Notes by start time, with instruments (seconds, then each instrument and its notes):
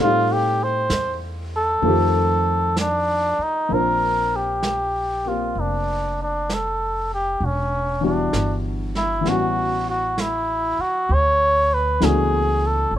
Already playing: upright bass A2, grand piano G3 A3
0.00 grand piano C4 D#4, muted trumpet F4
0.05 grand piano G4
0.33 muted trumpet G4
0.64 muted trumpet C5
0.90 upright bass E2, brush sweep, snare, hi-hat pedal
1.56 muted trumpet A4
1.82 upright bass F2, grand piano D#3 F3 A3 C4, brush sweep
1.87 grand piano G4
2.77 muted trumpet D4, brush sweep, snare, hi-hat pedal
3.38 muted upright bass stroke
3.43 muted trumpet D#4
3.69 upright bass A#1, grand piano F3 A#3 C4 D4, brush sweep
3.74 muted trumpet A#4, grand piano C5
4.36 muted trumpet G4
4.63 brush sweep, snare, hi-hat pedal
5.25 grand piano A#3 C4 G4, muted trumpet F4
5.55 upright bass F1, brush sweep
5.60 muted trumpet D4
6.23 muted trumpet D4
6.50 brush sweep, snare, hi-hat pedal
6.54 muted trumpet A4
7.14 muted trumpet G4
7.40 upright bass E1, brush sweep
7.45 muted trumpet C#4
8.01 grand piano E3 G3 B3 D4 F#4
8.06 muted trumpet D4
8.33 upright bass G1, brush sweep, snare, hi-hat pedal
8.95 muted trumpet E4, snare
9.21 grand piano E3 G3
9.25 upright bass A1, grand piano B3 C#4, muted trumpet F#4, brush sweep, snare
9.32 grand piano F#4
9.90 muted trumpet F#4
10.18 muted trumpet E4, brush sweep, snare, hi-hat pedal
10.78 muted trumpet F#4, muted upright bass stroke
11.09 upright bass D2, brush sweep
11.13 muted trumpet C#5
11.74 muted trumpet B4
12.00 upright bass C#2, grand piano E3 A3 B3 D4 F#4, brush sweep, snare, hi-hat pedal
12.05 muted trumpet G#4
12.67 muted trumpet A4
12.91 upright bass A1, brush sweep